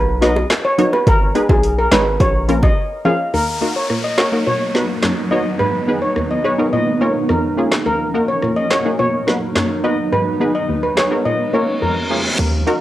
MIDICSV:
0, 0, Header, 1, 8, 480
1, 0, Start_track
1, 0, Key_signature, -6, "minor"
1, 0, Tempo, 566038
1, 906, Time_signature, 4, 2, 24, 8
1, 10860, End_track
2, 0, Start_track
2, 0, Title_t, "Steel pan"
2, 0, Program_c, 0, 114
2, 190, Note_on_c, 0, 75, 80
2, 289, Note_off_c, 0, 75, 0
2, 550, Note_on_c, 0, 73, 83
2, 649, Note_off_c, 0, 73, 0
2, 789, Note_on_c, 0, 71, 77
2, 889, Note_off_c, 0, 71, 0
2, 912, Note_on_c, 0, 70, 103
2, 1010, Note_off_c, 0, 70, 0
2, 1269, Note_on_c, 0, 68, 75
2, 1369, Note_off_c, 0, 68, 0
2, 1514, Note_on_c, 0, 70, 78
2, 1612, Note_off_c, 0, 70, 0
2, 1632, Note_on_c, 0, 71, 86
2, 1731, Note_off_c, 0, 71, 0
2, 1871, Note_on_c, 0, 73, 81
2, 1970, Note_off_c, 0, 73, 0
2, 2232, Note_on_c, 0, 75, 79
2, 2330, Note_off_c, 0, 75, 0
2, 2588, Note_on_c, 0, 77, 77
2, 2688, Note_off_c, 0, 77, 0
2, 2831, Note_on_c, 0, 70, 91
2, 3031, Note_off_c, 0, 70, 0
2, 3190, Note_on_c, 0, 73, 69
2, 3289, Note_off_c, 0, 73, 0
2, 3426, Note_on_c, 0, 75, 71
2, 3527, Note_off_c, 0, 75, 0
2, 3545, Note_on_c, 0, 73, 77
2, 3646, Note_off_c, 0, 73, 0
2, 3788, Note_on_c, 0, 73, 94
2, 4125, Note_off_c, 0, 73, 0
2, 4503, Note_on_c, 0, 75, 76
2, 4605, Note_off_c, 0, 75, 0
2, 4743, Note_on_c, 0, 71, 92
2, 4946, Note_off_c, 0, 71, 0
2, 5103, Note_on_c, 0, 73, 70
2, 5205, Note_off_c, 0, 73, 0
2, 5349, Note_on_c, 0, 75, 68
2, 5449, Note_off_c, 0, 75, 0
2, 5467, Note_on_c, 0, 73, 77
2, 5567, Note_off_c, 0, 73, 0
2, 5706, Note_on_c, 0, 75, 81
2, 5807, Note_off_c, 0, 75, 0
2, 5946, Note_on_c, 0, 73, 66
2, 6047, Note_off_c, 0, 73, 0
2, 6187, Note_on_c, 0, 70, 68
2, 6525, Note_off_c, 0, 70, 0
2, 6665, Note_on_c, 0, 70, 94
2, 6868, Note_off_c, 0, 70, 0
2, 7024, Note_on_c, 0, 73, 72
2, 7126, Note_off_c, 0, 73, 0
2, 7262, Note_on_c, 0, 75, 76
2, 7365, Note_off_c, 0, 75, 0
2, 7385, Note_on_c, 0, 73, 76
2, 7487, Note_off_c, 0, 73, 0
2, 7624, Note_on_c, 0, 73, 95
2, 7963, Note_off_c, 0, 73, 0
2, 8344, Note_on_c, 0, 75, 78
2, 8446, Note_off_c, 0, 75, 0
2, 8586, Note_on_c, 0, 71, 93
2, 8788, Note_off_c, 0, 71, 0
2, 8946, Note_on_c, 0, 75, 73
2, 9047, Note_off_c, 0, 75, 0
2, 9185, Note_on_c, 0, 71, 69
2, 9286, Note_off_c, 0, 71, 0
2, 9302, Note_on_c, 0, 73, 77
2, 9405, Note_off_c, 0, 73, 0
2, 9544, Note_on_c, 0, 75, 78
2, 9646, Note_off_c, 0, 75, 0
2, 9782, Note_on_c, 0, 73, 69
2, 9885, Note_off_c, 0, 73, 0
2, 10025, Note_on_c, 0, 70, 68
2, 10364, Note_off_c, 0, 70, 0
2, 10860, End_track
3, 0, Start_track
3, 0, Title_t, "Synth stab"
3, 0, Program_c, 1, 62
3, 180, Note_on_c, 1, 54, 80
3, 182, Note_on_c, 1, 59, 76
3, 185, Note_on_c, 1, 63, 74
3, 185, Note_on_c, 1, 66, 73
3, 188, Note_on_c, 1, 71, 88
3, 279, Note_off_c, 1, 54, 0
3, 280, Note_off_c, 1, 59, 0
3, 282, Note_off_c, 1, 63, 0
3, 282, Note_off_c, 1, 66, 0
3, 283, Note_off_c, 1, 71, 0
3, 662, Note_on_c, 1, 54, 77
3, 665, Note_on_c, 1, 59, 72
3, 667, Note_on_c, 1, 63, 70
3, 668, Note_on_c, 1, 66, 68
3, 671, Note_on_c, 1, 73, 82
3, 760, Note_off_c, 1, 54, 0
3, 761, Note_off_c, 1, 59, 0
3, 762, Note_off_c, 1, 63, 0
3, 763, Note_off_c, 1, 66, 0
3, 765, Note_off_c, 1, 73, 0
3, 1141, Note_on_c, 1, 56, 81
3, 1144, Note_on_c, 1, 59, 74
3, 1145, Note_on_c, 1, 63, 75
3, 1146, Note_on_c, 1, 68, 73
3, 1149, Note_on_c, 1, 71, 88
3, 1240, Note_off_c, 1, 56, 0
3, 1241, Note_off_c, 1, 59, 0
3, 1242, Note_off_c, 1, 63, 0
3, 1242, Note_off_c, 1, 68, 0
3, 1244, Note_off_c, 1, 71, 0
3, 1623, Note_on_c, 1, 56, 78
3, 1626, Note_on_c, 1, 59, 71
3, 1627, Note_on_c, 1, 63, 69
3, 1629, Note_on_c, 1, 68, 73
3, 1633, Note_on_c, 1, 73, 87
3, 1720, Note_off_c, 1, 56, 0
3, 1722, Note_off_c, 1, 59, 0
3, 1723, Note_off_c, 1, 63, 0
3, 1723, Note_off_c, 1, 68, 0
3, 1725, Note_off_c, 1, 73, 0
3, 2104, Note_on_c, 1, 53, 77
3, 2107, Note_on_c, 1, 58, 73
3, 2109, Note_on_c, 1, 61, 71
3, 2110, Note_on_c, 1, 65, 75
3, 2112, Note_on_c, 1, 70, 86
3, 2201, Note_off_c, 1, 53, 0
3, 2202, Note_off_c, 1, 58, 0
3, 2203, Note_off_c, 1, 61, 0
3, 2204, Note_off_c, 1, 65, 0
3, 2205, Note_off_c, 1, 70, 0
3, 2585, Note_on_c, 1, 53, 78
3, 2587, Note_on_c, 1, 58, 68
3, 2590, Note_on_c, 1, 61, 70
3, 2591, Note_on_c, 1, 65, 70
3, 2593, Note_on_c, 1, 68, 85
3, 2681, Note_off_c, 1, 53, 0
3, 2683, Note_off_c, 1, 58, 0
3, 2684, Note_off_c, 1, 61, 0
3, 2684, Note_off_c, 1, 65, 0
3, 2686, Note_off_c, 1, 68, 0
3, 2828, Note_on_c, 1, 39, 75
3, 3061, Note_on_c, 1, 58, 76
3, 3064, Note_on_c, 1, 63, 73
3, 3068, Note_on_c, 1, 66, 72
3, 3070, Note_on_c, 1, 70, 84
3, 3160, Note_off_c, 1, 58, 0
3, 3161, Note_off_c, 1, 63, 0
3, 3163, Note_off_c, 1, 66, 0
3, 3164, Note_off_c, 1, 70, 0
3, 3184, Note_off_c, 1, 39, 0
3, 3307, Note_on_c, 1, 46, 73
3, 3542, Note_on_c, 1, 66, 74
3, 3550, Note_on_c, 1, 70, 82
3, 3592, Note_off_c, 1, 66, 0
3, 3596, Note_off_c, 1, 70, 0
3, 3664, Note_off_c, 1, 46, 0
3, 3665, Note_on_c, 1, 58, 67
3, 3667, Note_on_c, 1, 63, 62
3, 3670, Note_on_c, 1, 66, 61
3, 3673, Note_on_c, 1, 70, 71
3, 3761, Note_off_c, 1, 58, 0
3, 3763, Note_off_c, 1, 63, 0
3, 3764, Note_off_c, 1, 66, 0
3, 3765, Note_off_c, 1, 70, 0
3, 3790, Note_on_c, 1, 47, 73
3, 4024, Note_on_c, 1, 59, 73
3, 4027, Note_on_c, 1, 63, 69
3, 4030, Note_on_c, 1, 66, 67
3, 4032, Note_on_c, 1, 71, 82
3, 4121, Note_off_c, 1, 59, 0
3, 4122, Note_off_c, 1, 63, 0
3, 4124, Note_off_c, 1, 66, 0
3, 4125, Note_off_c, 1, 71, 0
3, 4145, Note_off_c, 1, 47, 0
3, 4268, Note_on_c, 1, 42, 84
3, 4503, Note_on_c, 1, 59, 70
3, 4507, Note_on_c, 1, 63, 66
3, 4509, Note_on_c, 1, 66, 67
3, 4512, Note_on_c, 1, 73, 83
3, 4601, Note_off_c, 1, 59, 0
3, 4602, Note_off_c, 1, 63, 0
3, 4603, Note_off_c, 1, 66, 0
3, 4605, Note_off_c, 1, 73, 0
3, 4624, Note_off_c, 1, 42, 0
3, 4746, Note_on_c, 1, 44, 75
3, 4982, Note_on_c, 1, 59, 73
3, 4985, Note_on_c, 1, 63, 68
3, 4988, Note_on_c, 1, 68, 70
3, 4991, Note_on_c, 1, 71, 84
3, 5080, Note_off_c, 1, 59, 0
3, 5082, Note_off_c, 1, 63, 0
3, 5083, Note_off_c, 1, 68, 0
3, 5085, Note_off_c, 1, 71, 0
3, 5103, Note_off_c, 1, 44, 0
3, 5226, Note_on_c, 1, 39, 72
3, 5462, Note_on_c, 1, 68, 73
3, 5470, Note_on_c, 1, 71, 84
3, 5512, Note_off_c, 1, 68, 0
3, 5516, Note_off_c, 1, 71, 0
3, 5581, Note_on_c, 1, 59, 68
3, 5583, Note_off_c, 1, 39, 0
3, 5584, Note_on_c, 1, 63, 61
3, 5588, Note_on_c, 1, 68, 64
3, 5590, Note_on_c, 1, 70, 74
3, 5680, Note_off_c, 1, 59, 0
3, 5681, Note_off_c, 1, 63, 0
3, 5683, Note_off_c, 1, 68, 0
3, 5684, Note_off_c, 1, 70, 0
3, 5705, Note_on_c, 1, 46, 77
3, 5941, Note_on_c, 1, 58, 77
3, 5944, Note_on_c, 1, 61, 67
3, 5946, Note_on_c, 1, 65, 69
3, 5949, Note_on_c, 1, 70, 82
3, 6040, Note_off_c, 1, 58, 0
3, 6041, Note_off_c, 1, 61, 0
3, 6042, Note_off_c, 1, 65, 0
3, 6043, Note_off_c, 1, 70, 0
3, 6063, Note_off_c, 1, 46, 0
3, 6185, Note_on_c, 1, 41, 75
3, 6421, Note_on_c, 1, 58, 73
3, 6425, Note_on_c, 1, 61, 65
3, 6427, Note_on_c, 1, 65, 64
3, 6430, Note_on_c, 1, 68, 78
3, 6520, Note_off_c, 1, 58, 0
3, 6521, Note_off_c, 1, 61, 0
3, 6523, Note_off_c, 1, 65, 0
3, 6524, Note_off_c, 1, 68, 0
3, 6543, Note_off_c, 1, 41, 0
3, 6665, Note_on_c, 1, 39, 73
3, 6902, Note_on_c, 1, 58, 76
3, 6905, Note_on_c, 1, 63, 69
3, 6907, Note_on_c, 1, 66, 72
3, 6911, Note_on_c, 1, 70, 84
3, 7000, Note_off_c, 1, 58, 0
3, 7002, Note_off_c, 1, 63, 0
3, 7003, Note_off_c, 1, 66, 0
3, 7004, Note_off_c, 1, 70, 0
3, 7023, Note_off_c, 1, 39, 0
3, 7149, Note_on_c, 1, 46, 71
3, 7385, Note_on_c, 1, 66, 74
3, 7392, Note_on_c, 1, 73, 83
3, 7433, Note_off_c, 1, 66, 0
3, 7437, Note_off_c, 1, 73, 0
3, 7503, Note_on_c, 1, 58, 68
3, 7505, Note_off_c, 1, 46, 0
3, 7505, Note_on_c, 1, 63, 65
3, 7509, Note_on_c, 1, 66, 63
3, 7511, Note_on_c, 1, 68, 76
3, 7601, Note_off_c, 1, 58, 0
3, 7602, Note_off_c, 1, 63, 0
3, 7603, Note_off_c, 1, 66, 0
3, 7605, Note_off_c, 1, 68, 0
3, 7627, Note_on_c, 1, 47, 72
3, 7860, Note_on_c, 1, 59, 76
3, 7864, Note_on_c, 1, 63, 68
3, 7867, Note_on_c, 1, 66, 70
3, 7870, Note_on_c, 1, 71, 87
3, 7959, Note_off_c, 1, 59, 0
3, 7961, Note_off_c, 1, 63, 0
3, 7963, Note_off_c, 1, 66, 0
3, 7964, Note_off_c, 1, 71, 0
3, 7983, Note_off_c, 1, 47, 0
3, 8103, Note_on_c, 1, 42, 82
3, 8340, Note_on_c, 1, 59, 72
3, 8343, Note_on_c, 1, 63, 68
3, 8346, Note_on_c, 1, 66, 68
3, 8348, Note_on_c, 1, 71, 80
3, 8439, Note_off_c, 1, 59, 0
3, 8441, Note_off_c, 1, 63, 0
3, 8442, Note_off_c, 1, 66, 0
3, 8443, Note_off_c, 1, 71, 0
3, 8462, Note_off_c, 1, 42, 0
3, 8584, Note_on_c, 1, 44, 76
3, 8821, Note_on_c, 1, 59, 77
3, 8823, Note_on_c, 1, 63, 71
3, 8825, Note_on_c, 1, 68, 72
3, 8829, Note_on_c, 1, 71, 81
3, 8919, Note_off_c, 1, 59, 0
3, 8921, Note_off_c, 1, 63, 0
3, 8922, Note_off_c, 1, 68, 0
3, 8923, Note_off_c, 1, 71, 0
3, 8942, Note_off_c, 1, 44, 0
3, 9065, Note_on_c, 1, 39, 73
3, 9299, Note_on_c, 1, 68, 77
3, 9308, Note_on_c, 1, 73, 87
3, 9351, Note_off_c, 1, 68, 0
3, 9355, Note_off_c, 1, 73, 0
3, 9419, Note_on_c, 1, 59, 68
3, 9421, Note_on_c, 1, 63, 62
3, 9422, Note_off_c, 1, 39, 0
3, 9425, Note_on_c, 1, 68, 64
3, 9427, Note_on_c, 1, 70, 74
3, 9518, Note_off_c, 1, 59, 0
3, 9519, Note_off_c, 1, 63, 0
3, 9522, Note_off_c, 1, 68, 0
3, 9523, Note_off_c, 1, 70, 0
3, 9543, Note_on_c, 1, 46, 74
3, 9780, Note_on_c, 1, 58, 77
3, 9783, Note_on_c, 1, 61, 68
3, 9785, Note_on_c, 1, 65, 69
3, 9788, Note_on_c, 1, 70, 83
3, 9879, Note_off_c, 1, 58, 0
3, 9880, Note_off_c, 1, 61, 0
3, 9882, Note_off_c, 1, 65, 0
3, 9883, Note_off_c, 1, 70, 0
3, 9901, Note_off_c, 1, 46, 0
3, 10024, Note_on_c, 1, 41, 72
3, 10261, Note_on_c, 1, 58, 76
3, 10264, Note_on_c, 1, 61, 67
3, 10267, Note_on_c, 1, 65, 67
3, 10269, Note_on_c, 1, 68, 79
3, 10360, Note_off_c, 1, 58, 0
3, 10361, Note_off_c, 1, 61, 0
3, 10362, Note_off_c, 1, 65, 0
3, 10363, Note_off_c, 1, 68, 0
3, 10382, Note_off_c, 1, 41, 0
3, 10741, Note_on_c, 1, 58, 93
3, 10743, Note_on_c, 1, 63, 85
3, 10747, Note_on_c, 1, 66, 89
3, 10749, Note_on_c, 1, 70, 102
3, 10839, Note_off_c, 1, 58, 0
3, 10841, Note_off_c, 1, 63, 0
3, 10842, Note_off_c, 1, 66, 0
3, 10843, Note_off_c, 1, 70, 0
3, 10860, End_track
4, 0, Start_track
4, 0, Title_t, "Ambient pad"
4, 0, Program_c, 2, 92
4, 2828, Note_on_c, 2, 54, 86
4, 2828, Note_on_c, 2, 63, 77
4, 3785, Note_on_c, 2, 59, 74
4, 4728, Note_off_c, 2, 54, 0
4, 5678, Note_off_c, 2, 63, 0
4, 5686, Note_off_c, 2, 59, 0
4, 5702, Note_on_c, 2, 70, 95
4, 6662, Note_on_c, 2, 63, 74
4, 6663, Note_on_c, 2, 54, 83
4, 7605, Note_off_c, 2, 70, 0
4, 7624, Note_on_c, 2, 71, 88
4, 7625, Note_on_c, 2, 59, 78
4, 8565, Note_off_c, 2, 54, 0
4, 9515, Note_off_c, 2, 63, 0
4, 9526, Note_off_c, 2, 59, 0
4, 9526, Note_off_c, 2, 71, 0
4, 10860, End_track
5, 0, Start_track
5, 0, Title_t, "808-style bass"
5, 0, Program_c, 3, 38
5, 0, Note_on_c, 3, 35, 102
5, 377, Note_off_c, 3, 35, 0
5, 906, Note_on_c, 3, 32, 114
5, 1121, Note_off_c, 3, 32, 0
5, 1264, Note_on_c, 3, 35, 93
5, 1588, Note_off_c, 3, 35, 0
5, 1626, Note_on_c, 3, 32, 97
5, 1841, Note_off_c, 3, 32, 0
5, 1867, Note_on_c, 3, 34, 110
5, 2297, Note_off_c, 3, 34, 0
5, 10506, Note_on_c, 3, 39, 113
5, 10721, Note_off_c, 3, 39, 0
5, 10860, End_track
6, 0, Start_track
6, 0, Title_t, "Downlifter"
6, 0, Program_c, 4, 103
6, 2827, Note_on_c, 4, 60, 85
6, 6667, Note_off_c, 4, 60, 0
6, 10860, End_track
7, 0, Start_track
7, 0, Title_t, "Reverse cymbal"
7, 0, Program_c, 5, 119
7, 9547, Note_on_c, 5, 60, 74
7, 10506, Note_off_c, 5, 60, 0
7, 10860, End_track
8, 0, Start_track
8, 0, Title_t, "Drums"
8, 189, Note_on_c, 9, 42, 66
8, 190, Note_on_c, 9, 38, 70
8, 274, Note_off_c, 9, 38, 0
8, 274, Note_off_c, 9, 42, 0
8, 308, Note_on_c, 9, 60, 85
8, 393, Note_off_c, 9, 60, 0
8, 426, Note_on_c, 9, 37, 93
8, 426, Note_on_c, 9, 38, 113
8, 426, Note_on_c, 9, 42, 81
8, 434, Note_on_c, 9, 39, 96
8, 510, Note_off_c, 9, 42, 0
8, 511, Note_off_c, 9, 37, 0
8, 511, Note_off_c, 9, 38, 0
8, 519, Note_off_c, 9, 39, 0
8, 666, Note_on_c, 9, 42, 55
8, 667, Note_on_c, 9, 61, 83
8, 751, Note_off_c, 9, 42, 0
8, 752, Note_off_c, 9, 61, 0
8, 790, Note_on_c, 9, 60, 67
8, 875, Note_off_c, 9, 60, 0
8, 906, Note_on_c, 9, 36, 125
8, 906, Note_on_c, 9, 42, 72
8, 912, Note_on_c, 9, 60, 71
8, 991, Note_off_c, 9, 36, 0
8, 991, Note_off_c, 9, 42, 0
8, 997, Note_off_c, 9, 60, 0
8, 1146, Note_on_c, 9, 42, 52
8, 1151, Note_on_c, 9, 60, 47
8, 1230, Note_off_c, 9, 42, 0
8, 1236, Note_off_c, 9, 60, 0
8, 1265, Note_on_c, 9, 36, 99
8, 1267, Note_on_c, 9, 60, 88
8, 1350, Note_off_c, 9, 36, 0
8, 1352, Note_off_c, 9, 60, 0
8, 1385, Note_on_c, 9, 42, 75
8, 1470, Note_off_c, 9, 42, 0
8, 1625, Note_on_c, 9, 38, 119
8, 1626, Note_on_c, 9, 42, 57
8, 1628, Note_on_c, 9, 61, 82
8, 1633, Note_on_c, 9, 39, 93
8, 1710, Note_off_c, 9, 38, 0
8, 1711, Note_off_c, 9, 42, 0
8, 1713, Note_off_c, 9, 61, 0
8, 1718, Note_off_c, 9, 39, 0
8, 1865, Note_on_c, 9, 60, 76
8, 1867, Note_on_c, 9, 36, 93
8, 1868, Note_on_c, 9, 42, 65
8, 1950, Note_off_c, 9, 60, 0
8, 1952, Note_off_c, 9, 36, 0
8, 1952, Note_off_c, 9, 42, 0
8, 2108, Note_on_c, 9, 42, 65
8, 2193, Note_off_c, 9, 42, 0
8, 2227, Note_on_c, 9, 36, 100
8, 2228, Note_on_c, 9, 60, 85
8, 2312, Note_off_c, 9, 36, 0
8, 2313, Note_off_c, 9, 60, 0
8, 3305, Note_on_c, 9, 37, 73
8, 3390, Note_off_c, 9, 37, 0
8, 3544, Note_on_c, 9, 38, 107
8, 3552, Note_on_c, 9, 39, 85
8, 3629, Note_off_c, 9, 38, 0
8, 3637, Note_off_c, 9, 39, 0
8, 4027, Note_on_c, 9, 38, 66
8, 4112, Note_off_c, 9, 38, 0
8, 4262, Note_on_c, 9, 37, 86
8, 4262, Note_on_c, 9, 38, 104
8, 4270, Note_on_c, 9, 39, 85
8, 4347, Note_off_c, 9, 37, 0
8, 4347, Note_off_c, 9, 38, 0
8, 4355, Note_off_c, 9, 39, 0
8, 5224, Note_on_c, 9, 37, 75
8, 5309, Note_off_c, 9, 37, 0
8, 6183, Note_on_c, 9, 37, 88
8, 6268, Note_off_c, 9, 37, 0
8, 6545, Note_on_c, 9, 38, 107
8, 6553, Note_on_c, 9, 39, 85
8, 6629, Note_off_c, 9, 38, 0
8, 6638, Note_off_c, 9, 39, 0
8, 7144, Note_on_c, 9, 37, 76
8, 7229, Note_off_c, 9, 37, 0
8, 7384, Note_on_c, 9, 38, 106
8, 7392, Note_on_c, 9, 39, 84
8, 7469, Note_off_c, 9, 38, 0
8, 7477, Note_off_c, 9, 39, 0
8, 7868, Note_on_c, 9, 38, 68
8, 7952, Note_off_c, 9, 38, 0
8, 8104, Note_on_c, 9, 37, 89
8, 8104, Note_on_c, 9, 38, 107
8, 8112, Note_on_c, 9, 39, 87
8, 8188, Note_off_c, 9, 37, 0
8, 8188, Note_off_c, 9, 38, 0
8, 8197, Note_off_c, 9, 39, 0
8, 9305, Note_on_c, 9, 38, 108
8, 9313, Note_on_c, 9, 39, 86
8, 9390, Note_off_c, 9, 38, 0
8, 9398, Note_off_c, 9, 39, 0
8, 10507, Note_on_c, 9, 42, 70
8, 10507, Note_on_c, 9, 49, 90
8, 10592, Note_off_c, 9, 42, 0
8, 10592, Note_off_c, 9, 49, 0
8, 10746, Note_on_c, 9, 42, 51
8, 10831, Note_off_c, 9, 42, 0
8, 10860, End_track
0, 0, End_of_file